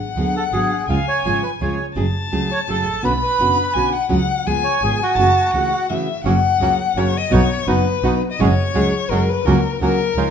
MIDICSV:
0, 0, Header, 1, 6, 480
1, 0, Start_track
1, 0, Key_signature, 3, "minor"
1, 0, Tempo, 356718
1, 1196, Time_signature, 3, 2, 24, 8
1, 8410, Key_signature, 6, "major"
1, 13866, End_track
2, 0, Start_track
2, 0, Title_t, "Violin"
2, 0, Program_c, 0, 40
2, 0, Note_on_c, 0, 78, 70
2, 1142, Note_off_c, 0, 78, 0
2, 1202, Note_on_c, 0, 80, 70
2, 2350, Note_off_c, 0, 80, 0
2, 2638, Note_on_c, 0, 81, 70
2, 4100, Note_on_c, 0, 83, 78
2, 4120, Note_off_c, 0, 81, 0
2, 5029, Note_on_c, 0, 80, 66
2, 5049, Note_off_c, 0, 83, 0
2, 5281, Note_on_c, 0, 78, 71
2, 5302, Note_off_c, 0, 80, 0
2, 5522, Note_off_c, 0, 78, 0
2, 5534, Note_on_c, 0, 78, 76
2, 6003, Note_on_c, 0, 80, 78
2, 6023, Note_off_c, 0, 78, 0
2, 6940, Note_on_c, 0, 81, 71
2, 6960, Note_off_c, 0, 80, 0
2, 7417, Note_on_c, 0, 78, 72
2, 7437, Note_off_c, 0, 81, 0
2, 7922, Note_on_c, 0, 76, 58
2, 7942, Note_off_c, 0, 78, 0
2, 8390, Note_off_c, 0, 76, 0
2, 8398, Note_on_c, 0, 78, 77
2, 9387, Note_on_c, 0, 73, 70
2, 9407, Note_off_c, 0, 78, 0
2, 9654, Note_on_c, 0, 75, 75
2, 9674, Note_off_c, 0, 73, 0
2, 9858, Note_on_c, 0, 73, 81
2, 9878, Note_off_c, 0, 75, 0
2, 10333, Note_on_c, 0, 71, 78
2, 10353, Note_off_c, 0, 73, 0
2, 11049, Note_off_c, 0, 71, 0
2, 11185, Note_on_c, 0, 75, 61
2, 11309, Note_on_c, 0, 73, 78
2, 11330, Note_off_c, 0, 75, 0
2, 12244, Note_on_c, 0, 70, 68
2, 12264, Note_off_c, 0, 73, 0
2, 12505, Note_on_c, 0, 71, 73
2, 12525, Note_off_c, 0, 70, 0
2, 12724, Note_on_c, 0, 70, 72
2, 12744, Note_off_c, 0, 71, 0
2, 13201, Note_off_c, 0, 70, 0
2, 13211, Note_on_c, 0, 70, 83
2, 13866, Note_off_c, 0, 70, 0
2, 13866, End_track
3, 0, Start_track
3, 0, Title_t, "Bandoneon"
3, 0, Program_c, 1, 23
3, 488, Note_on_c, 1, 69, 64
3, 593, Note_off_c, 1, 69, 0
3, 706, Note_on_c, 1, 68, 69
3, 1157, Note_off_c, 1, 68, 0
3, 1200, Note_on_c, 1, 77, 69
3, 1422, Note_off_c, 1, 77, 0
3, 1454, Note_on_c, 1, 73, 77
3, 1924, Note_on_c, 1, 71, 53
3, 1941, Note_off_c, 1, 73, 0
3, 2032, Note_off_c, 1, 71, 0
3, 2178, Note_on_c, 1, 73, 58
3, 2506, Note_off_c, 1, 73, 0
3, 3384, Note_on_c, 1, 73, 74
3, 3488, Note_off_c, 1, 73, 0
3, 3631, Note_on_c, 1, 69, 67
3, 4065, Note_off_c, 1, 69, 0
3, 4097, Note_on_c, 1, 71, 65
3, 4202, Note_off_c, 1, 71, 0
3, 4341, Note_on_c, 1, 71, 73
3, 5238, Note_off_c, 1, 71, 0
3, 6245, Note_on_c, 1, 73, 74
3, 6492, Note_off_c, 1, 73, 0
3, 6507, Note_on_c, 1, 68, 69
3, 6719, Note_off_c, 1, 68, 0
3, 6765, Note_on_c, 1, 66, 74
3, 7894, Note_off_c, 1, 66, 0
3, 13866, End_track
4, 0, Start_track
4, 0, Title_t, "Bandoneon"
4, 0, Program_c, 2, 23
4, 8407, Note_on_c, 2, 58, 56
4, 8407, Note_on_c, 2, 61, 55
4, 8413, Note_on_c, 2, 66, 64
4, 8611, Note_off_c, 2, 58, 0
4, 8611, Note_off_c, 2, 61, 0
4, 8614, Note_off_c, 2, 66, 0
4, 8898, Note_on_c, 2, 58, 47
4, 8900, Note_on_c, 2, 61, 40
4, 8905, Note_on_c, 2, 66, 48
4, 9097, Note_off_c, 2, 58, 0
4, 9098, Note_off_c, 2, 61, 0
4, 9100, Note_off_c, 2, 66, 0
4, 9373, Note_on_c, 2, 58, 47
4, 9373, Note_on_c, 2, 66, 49
4, 9378, Note_on_c, 2, 61, 43
4, 9574, Note_off_c, 2, 58, 0
4, 9574, Note_off_c, 2, 66, 0
4, 9577, Note_off_c, 2, 61, 0
4, 9847, Note_on_c, 2, 59, 60
4, 9852, Note_on_c, 2, 63, 60
4, 9855, Note_on_c, 2, 66, 70
4, 10050, Note_off_c, 2, 59, 0
4, 10053, Note_off_c, 2, 63, 0
4, 10054, Note_off_c, 2, 66, 0
4, 10329, Note_on_c, 2, 59, 48
4, 10334, Note_on_c, 2, 63, 45
4, 10340, Note_on_c, 2, 66, 53
4, 10531, Note_off_c, 2, 59, 0
4, 10533, Note_off_c, 2, 63, 0
4, 10536, Note_off_c, 2, 66, 0
4, 10817, Note_on_c, 2, 59, 53
4, 10817, Note_on_c, 2, 63, 47
4, 10820, Note_on_c, 2, 66, 52
4, 11013, Note_off_c, 2, 59, 0
4, 11013, Note_off_c, 2, 63, 0
4, 11015, Note_off_c, 2, 66, 0
4, 11300, Note_on_c, 2, 56, 70
4, 11305, Note_on_c, 2, 61, 62
4, 11308, Note_on_c, 2, 66, 81
4, 11494, Note_off_c, 2, 56, 0
4, 11496, Note_off_c, 2, 61, 0
4, 11498, Note_off_c, 2, 66, 0
4, 11766, Note_on_c, 2, 56, 50
4, 11767, Note_on_c, 2, 61, 42
4, 11767, Note_on_c, 2, 66, 48
4, 11966, Note_off_c, 2, 56, 0
4, 11966, Note_off_c, 2, 61, 0
4, 11966, Note_off_c, 2, 66, 0
4, 12248, Note_on_c, 2, 56, 51
4, 12251, Note_on_c, 2, 61, 40
4, 12255, Note_on_c, 2, 66, 57
4, 12446, Note_off_c, 2, 56, 0
4, 12447, Note_off_c, 2, 61, 0
4, 12449, Note_off_c, 2, 66, 0
4, 12725, Note_on_c, 2, 58, 70
4, 12727, Note_on_c, 2, 61, 62
4, 12734, Note_on_c, 2, 66, 77
4, 12924, Note_off_c, 2, 58, 0
4, 12925, Note_off_c, 2, 61, 0
4, 12928, Note_off_c, 2, 66, 0
4, 13213, Note_on_c, 2, 66, 49
4, 13215, Note_on_c, 2, 61, 41
4, 13216, Note_on_c, 2, 58, 44
4, 13408, Note_off_c, 2, 66, 0
4, 13409, Note_off_c, 2, 58, 0
4, 13409, Note_off_c, 2, 61, 0
4, 13680, Note_on_c, 2, 61, 47
4, 13686, Note_on_c, 2, 63, 39
4, 13689, Note_on_c, 2, 65, 53
4, 13866, Note_off_c, 2, 61, 0
4, 13866, Note_off_c, 2, 63, 0
4, 13866, Note_off_c, 2, 65, 0
4, 13866, End_track
5, 0, Start_track
5, 0, Title_t, "Nylon-string guitar"
5, 0, Program_c, 3, 24
5, 219, Note_on_c, 3, 50, 51
5, 230, Note_on_c, 3, 54, 57
5, 230, Note_on_c, 3, 59, 63
5, 239, Note_on_c, 3, 66, 54
5, 246, Note_on_c, 3, 68, 55
5, 455, Note_off_c, 3, 50, 0
5, 461, Note_off_c, 3, 54, 0
5, 461, Note_off_c, 3, 59, 0
5, 465, Note_off_c, 3, 66, 0
5, 469, Note_off_c, 3, 68, 0
5, 708, Note_on_c, 3, 50, 50
5, 710, Note_on_c, 3, 54, 52
5, 717, Note_on_c, 3, 66, 56
5, 722, Note_on_c, 3, 59, 52
5, 725, Note_on_c, 3, 68, 56
5, 939, Note_off_c, 3, 50, 0
5, 940, Note_off_c, 3, 54, 0
5, 944, Note_off_c, 3, 66, 0
5, 946, Note_off_c, 3, 59, 0
5, 948, Note_off_c, 3, 68, 0
5, 1198, Note_on_c, 3, 49, 58
5, 1206, Note_on_c, 3, 53, 62
5, 1209, Note_on_c, 3, 56, 64
5, 1210, Note_on_c, 3, 61, 64
5, 1219, Note_on_c, 3, 65, 64
5, 1317, Note_off_c, 3, 49, 0
5, 1322, Note_off_c, 3, 53, 0
5, 1323, Note_off_c, 3, 56, 0
5, 1324, Note_off_c, 3, 61, 0
5, 1328, Note_off_c, 3, 65, 0
5, 1682, Note_on_c, 3, 49, 56
5, 1684, Note_on_c, 3, 53, 60
5, 1688, Note_on_c, 3, 56, 54
5, 1695, Note_on_c, 3, 61, 57
5, 1699, Note_on_c, 3, 65, 58
5, 1908, Note_off_c, 3, 49, 0
5, 1908, Note_off_c, 3, 53, 0
5, 1910, Note_off_c, 3, 56, 0
5, 1914, Note_off_c, 3, 61, 0
5, 1916, Note_off_c, 3, 65, 0
5, 2168, Note_on_c, 3, 53, 55
5, 2170, Note_on_c, 3, 56, 58
5, 2172, Note_on_c, 3, 61, 56
5, 2173, Note_on_c, 3, 49, 47
5, 2177, Note_on_c, 3, 65, 50
5, 2392, Note_off_c, 3, 53, 0
5, 2393, Note_off_c, 3, 56, 0
5, 2394, Note_off_c, 3, 61, 0
5, 2395, Note_off_c, 3, 49, 0
5, 2397, Note_off_c, 3, 65, 0
5, 2635, Note_on_c, 3, 49, 62
5, 2635, Note_on_c, 3, 54, 65
5, 2640, Note_on_c, 3, 57, 62
5, 2640, Note_on_c, 3, 61, 59
5, 2654, Note_on_c, 3, 68, 71
5, 2760, Note_off_c, 3, 49, 0
5, 2760, Note_off_c, 3, 54, 0
5, 2762, Note_off_c, 3, 57, 0
5, 2762, Note_off_c, 3, 61, 0
5, 2769, Note_off_c, 3, 68, 0
5, 3120, Note_on_c, 3, 54, 58
5, 3123, Note_on_c, 3, 49, 57
5, 3125, Note_on_c, 3, 61, 61
5, 3131, Note_on_c, 3, 57, 56
5, 3132, Note_on_c, 3, 68, 66
5, 3351, Note_off_c, 3, 54, 0
5, 3352, Note_off_c, 3, 49, 0
5, 3353, Note_off_c, 3, 61, 0
5, 3356, Note_off_c, 3, 57, 0
5, 3356, Note_off_c, 3, 68, 0
5, 3602, Note_on_c, 3, 49, 52
5, 3602, Note_on_c, 3, 54, 54
5, 3608, Note_on_c, 3, 57, 56
5, 3609, Note_on_c, 3, 61, 54
5, 3618, Note_on_c, 3, 68, 62
5, 3831, Note_off_c, 3, 49, 0
5, 3832, Note_off_c, 3, 54, 0
5, 3834, Note_off_c, 3, 57, 0
5, 3835, Note_off_c, 3, 61, 0
5, 3840, Note_off_c, 3, 68, 0
5, 4067, Note_on_c, 3, 47, 66
5, 4073, Note_on_c, 3, 59, 57
5, 4074, Note_on_c, 3, 50, 60
5, 4083, Note_on_c, 3, 66, 67
5, 4085, Note_on_c, 3, 61, 72
5, 4196, Note_off_c, 3, 47, 0
5, 4199, Note_off_c, 3, 50, 0
5, 4199, Note_off_c, 3, 59, 0
5, 4204, Note_off_c, 3, 66, 0
5, 4205, Note_off_c, 3, 61, 0
5, 4568, Note_on_c, 3, 47, 51
5, 4573, Note_on_c, 3, 50, 54
5, 4577, Note_on_c, 3, 61, 62
5, 4583, Note_on_c, 3, 59, 68
5, 4587, Note_on_c, 3, 66, 63
5, 4793, Note_off_c, 3, 47, 0
5, 4796, Note_off_c, 3, 50, 0
5, 4798, Note_off_c, 3, 61, 0
5, 4801, Note_off_c, 3, 59, 0
5, 4803, Note_off_c, 3, 66, 0
5, 5044, Note_on_c, 3, 47, 54
5, 5050, Note_on_c, 3, 50, 58
5, 5053, Note_on_c, 3, 59, 52
5, 5058, Note_on_c, 3, 66, 61
5, 5060, Note_on_c, 3, 61, 55
5, 5271, Note_off_c, 3, 47, 0
5, 5274, Note_off_c, 3, 50, 0
5, 5275, Note_off_c, 3, 59, 0
5, 5278, Note_off_c, 3, 66, 0
5, 5279, Note_off_c, 3, 61, 0
5, 5503, Note_on_c, 3, 49, 65
5, 5504, Note_on_c, 3, 61, 69
5, 5506, Note_on_c, 3, 57, 60
5, 5508, Note_on_c, 3, 54, 70
5, 5516, Note_on_c, 3, 66, 76
5, 5633, Note_off_c, 3, 49, 0
5, 5633, Note_off_c, 3, 61, 0
5, 5634, Note_off_c, 3, 57, 0
5, 5636, Note_off_c, 3, 54, 0
5, 5640, Note_off_c, 3, 66, 0
5, 6007, Note_on_c, 3, 53, 58
5, 6010, Note_on_c, 3, 49, 58
5, 6010, Note_on_c, 3, 56, 67
5, 6017, Note_on_c, 3, 59, 66
5, 6018, Note_on_c, 3, 68, 64
5, 6233, Note_off_c, 3, 53, 0
5, 6234, Note_off_c, 3, 49, 0
5, 6234, Note_off_c, 3, 56, 0
5, 6238, Note_off_c, 3, 59, 0
5, 6238, Note_off_c, 3, 68, 0
5, 6488, Note_on_c, 3, 49, 49
5, 6497, Note_on_c, 3, 53, 50
5, 6500, Note_on_c, 3, 56, 55
5, 6502, Note_on_c, 3, 59, 52
5, 6506, Note_on_c, 3, 68, 56
5, 6713, Note_off_c, 3, 49, 0
5, 6717, Note_off_c, 3, 53, 0
5, 6718, Note_off_c, 3, 56, 0
5, 6720, Note_off_c, 3, 59, 0
5, 6722, Note_off_c, 3, 68, 0
5, 6963, Note_on_c, 3, 49, 66
5, 6973, Note_on_c, 3, 52, 60
5, 6975, Note_on_c, 3, 57, 68
5, 6983, Note_on_c, 3, 61, 68
5, 6989, Note_on_c, 3, 66, 69
5, 7083, Note_off_c, 3, 49, 0
5, 7088, Note_off_c, 3, 52, 0
5, 7089, Note_off_c, 3, 57, 0
5, 7093, Note_off_c, 3, 61, 0
5, 7096, Note_off_c, 3, 66, 0
5, 7453, Note_on_c, 3, 49, 55
5, 7454, Note_on_c, 3, 52, 63
5, 7456, Note_on_c, 3, 61, 62
5, 7463, Note_on_c, 3, 57, 58
5, 7468, Note_on_c, 3, 66, 61
5, 7677, Note_off_c, 3, 49, 0
5, 7678, Note_off_c, 3, 52, 0
5, 7679, Note_off_c, 3, 61, 0
5, 7682, Note_off_c, 3, 57, 0
5, 7685, Note_off_c, 3, 66, 0
5, 7939, Note_on_c, 3, 49, 45
5, 7939, Note_on_c, 3, 52, 55
5, 7943, Note_on_c, 3, 57, 51
5, 7952, Note_on_c, 3, 61, 56
5, 7956, Note_on_c, 3, 66, 58
5, 8162, Note_off_c, 3, 49, 0
5, 8162, Note_off_c, 3, 52, 0
5, 8164, Note_off_c, 3, 57, 0
5, 8168, Note_off_c, 3, 61, 0
5, 8171, Note_off_c, 3, 66, 0
5, 8400, Note_on_c, 3, 49, 72
5, 8416, Note_on_c, 3, 54, 65
5, 8417, Note_on_c, 3, 58, 67
5, 8418, Note_on_c, 3, 61, 79
5, 8419, Note_on_c, 3, 66, 69
5, 8526, Note_off_c, 3, 49, 0
5, 8534, Note_off_c, 3, 54, 0
5, 8534, Note_off_c, 3, 58, 0
5, 8535, Note_off_c, 3, 61, 0
5, 8535, Note_off_c, 3, 66, 0
5, 8874, Note_on_c, 3, 49, 63
5, 8878, Note_on_c, 3, 54, 58
5, 8887, Note_on_c, 3, 58, 58
5, 8890, Note_on_c, 3, 66, 64
5, 8891, Note_on_c, 3, 61, 66
5, 9110, Note_off_c, 3, 49, 0
5, 9112, Note_off_c, 3, 54, 0
5, 9117, Note_off_c, 3, 58, 0
5, 9118, Note_off_c, 3, 66, 0
5, 9119, Note_off_c, 3, 61, 0
5, 9368, Note_on_c, 3, 49, 52
5, 9372, Note_on_c, 3, 58, 60
5, 9377, Note_on_c, 3, 54, 59
5, 9380, Note_on_c, 3, 61, 65
5, 9383, Note_on_c, 3, 66, 61
5, 9597, Note_off_c, 3, 49, 0
5, 9599, Note_off_c, 3, 58, 0
5, 9602, Note_off_c, 3, 54, 0
5, 9603, Note_off_c, 3, 61, 0
5, 9605, Note_off_c, 3, 66, 0
5, 9820, Note_on_c, 3, 47, 67
5, 9828, Note_on_c, 3, 54, 79
5, 9831, Note_on_c, 3, 59, 69
5, 9839, Note_on_c, 3, 66, 71
5, 9844, Note_on_c, 3, 63, 81
5, 9956, Note_off_c, 3, 47, 0
5, 9960, Note_off_c, 3, 54, 0
5, 9961, Note_off_c, 3, 59, 0
5, 9965, Note_off_c, 3, 66, 0
5, 9968, Note_off_c, 3, 63, 0
5, 10311, Note_on_c, 3, 47, 57
5, 10325, Note_on_c, 3, 63, 69
5, 10327, Note_on_c, 3, 54, 64
5, 10328, Note_on_c, 3, 59, 67
5, 10329, Note_on_c, 3, 66, 79
5, 10547, Note_off_c, 3, 47, 0
5, 10554, Note_off_c, 3, 63, 0
5, 10555, Note_off_c, 3, 54, 0
5, 10556, Note_off_c, 3, 59, 0
5, 10556, Note_off_c, 3, 66, 0
5, 10803, Note_on_c, 3, 59, 56
5, 10807, Note_on_c, 3, 47, 56
5, 10810, Note_on_c, 3, 63, 75
5, 10811, Note_on_c, 3, 54, 61
5, 10814, Note_on_c, 3, 66, 66
5, 11032, Note_off_c, 3, 59, 0
5, 11034, Note_off_c, 3, 47, 0
5, 11036, Note_off_c, 3, 54, 0
5, 11036, Note_off_c, 3, 63, 0
5, 11037, Note_off_c, 3, 66, 0
5, 11295, Note_on_c, 3, 54, 80
5, 11298, Note_on_c, 3, 56, 76
5, 11307, Note_on_c, 3, 61, 84
5, 11316, Note_on_c, 3, 68, 76
5, 11410, Note_off_c, 3, 54, 0
5, 11412, Note_off_c, 3, 56, 0
5, 11416, Note_off_c, 3, 61, 0
5, 11420, Note_off_c, 3, 68, 0
5, 11760, Note_on_c, 3, 54, 66
5, 11763, Note_on_c, 3, 56, 67
5, 11773, Note_on_c, 3, 61, 76
5, 11782, Note_on_c, 3, 68, 73
5, 11988, Note_off_c, 3, 54, 0
5, 11989, Note_off_c, 3, 56, 0
5, 11995, Note_off_c, 3, 61, 0
5, 11999, Note_off_c, 3, 68, 0
5, 12254, Note_on_c, 3, 54, 59
5, 12266, Note_on_c, 3, 56, 57
5, 12269, Note_on_c, 3, 61, 63
5, 12274, Note_on_c, 3, 68, 74
5, 12474, Note_off_c, 3, 54, 0
5, 12480, Note_off_c, 3, 56, 0
5, 12482, Note_off_c, 3, 61, 0
5, 12484, Note_off_c, 3, 68, 0
5, 12744, Note_on_c, 3, 49, 68
5, 12745, Note_on_c, 3, 58, 74
5, 12747, Note_on_c, 3, 61, 77
5, 12749, Note_on_c, 3, 54, 71
5, 12752, Note_on_c, 3, 66, 86
5, 12852, Note_off_c, 3, 49, 0
5, 12853, Note_off_c, 3, 58, 0
5, 12854, Note_off_c, 3, 61, 0
5, 12855, Note_off_c, 3, 54, 0
5, 12856, Note_off_c, 3, 66, 0
5, 13203, Note_on_c, 3, 54, 56
5, 13204, Note_on_c, 3, 49, 61
5, 13212, Note_on_c, 3, 58, 62
5, 13216, Note_on_c, 3, 61, 66
5, 13217, Note_on_c, 3, 66, 70
5, 13428, Note_off_c, 3, 54, 0
5, 13429, Note_off_c, 3, 49, 0
5, 13433, Note_off_c, 3, 58, 0
5, 13435, Note_off_c, 3, 61, 0
5, 13435, Note_off_c, 3, 66, 0
5, 13682, Note_on_c, 3, 49, 58
5, 13692, Note_on_c, 3, 53, 57
5, 13694, Note_on_c, 3, 56, 52
5, 13694, Note_on_c, 3, 63, 61
5, 13702, Note_on_c, 3, 65, 64
5, 13866, Note_off_c, 3, 49, 0
5, 13866, Note_off_c, 3, 53, 0
5, 13866, Note_off_c, 3, 56, 0
5, 13866, Note_off_c, 3, 63, 0
5, 13866, Note_off_c, 3, 65, 0
5, 13866, End_track
6, 0, Start_track
6, 0, Title_t, "Double bass"
6, 0, Program_c, 4, 43
6, 219, Note_on_c, 4, 38, 50
6, 430, Note_off_c, 4, 38, 0
6, 702, Note_on_c, 4, 32, 50
6, 911, Note_off_c, 4, 32, 0
6, 1179, Note_on_c, 4, 37, 71
6, 1389, Note_off_c, 4, 37, 0
6, 1671, Note_on_c, 4, 32, 48
6, 1876, Note_off_c, 4, 32, 0
6, 2161, Note_on_c, 4, 37, 53
6, 2364, Note_off_c, 4, 37, 0
6, 2638, Note_on_c, 4, 30, 66
6, 2843, Note_off_c, 4, 30, 0
6, 3135, Note_on_c, 4, 37, 50
6, 3332, Note_off_c, 4, 37, 0
6, 3619, Note_on_c, 4, 30, 46
6, 3814, Note_off_c, 4, 30, 0
6, 3848, Note_on_c, 4, 33, 44
6, 4075, Note_off_c, 4, 33, 0
6, 4083, Note_on_c, 4, 35, 68
6, 4286, Note_off_c, 4, 35, 0
6, 4568, Note_on_c, 4, 30, 50
6, 4767, Note_off_c, 4, 30, 0
6, 5058, Note_on_c, 4, 35, 48
6, 5252, Note_off_c, 4, 35, 0
6, 5523, Note_on_c, 4, 37, 75
6, 5724, Note_off_c, 4, 37, 0
6, 6006, Note_on_c, 4, 37, 54
6, 6206, Note_off_c, 4, 37, 0
6, 6475, Note_on_c, 4, 32, 56
6, 6681, Note_off_c, 4, 32, 0
6, 6943, Note_on_c, 4, 30, 76
6, 7154, Note_off_c, 4, 30, 0
6, 7433, Note_on_c, 4, 37, 49
6, 7642, Note_off_c, 4, 37, 0
6, 8403, Note_on_c, 4, 30, 73
6, 8609, Note_off_c, 4, 30, 0
6, 8874, Note_on_c, 4, 37, 53
6, 9085, Note_off_c, 4, 37, 0
6, 9351, Note_on_c, 4, 30, 54
6, 9563, Note_off_c, 4, 30, 0
6, 9848, Note_on_c, 4, 35, 87
6, 10051, Note_off_c, 4, 35, 0
6, 10327, Note_on_c, 4, 30, 60
6, 10529, Note_off_c, 4, 30, 0
6, 10804, Note_on_c, 4, 35, 59
6, 11007, Note_off_c, 4, 35, 0
6, 11303, Note_on_c, 4, 30, 88
6, 11495, Note_off_c, 4, 30, 0
6, 11770, Note_on_c, 4, 37, 62
6, 11968, Note_off_c, 4, 37, 0
6, 12245, Note_on_c, 4, 30, 62
6, 12444, Note_off_c, 4, 30, 0
6, 12719, Note_on_c, 4, 37, 81
6, 12921, Note_off_c, 4, 37, 0
6, 13194, Note_on_c, 4, 37, 58
6, 13398, Note_off_c, 4, 37, 0
6, 13654, Note_on_c, 4, 37, 60
6, 13866, Note_off_c, 4, 37, 0
6, 13866, End_track
0, 0, End_of_file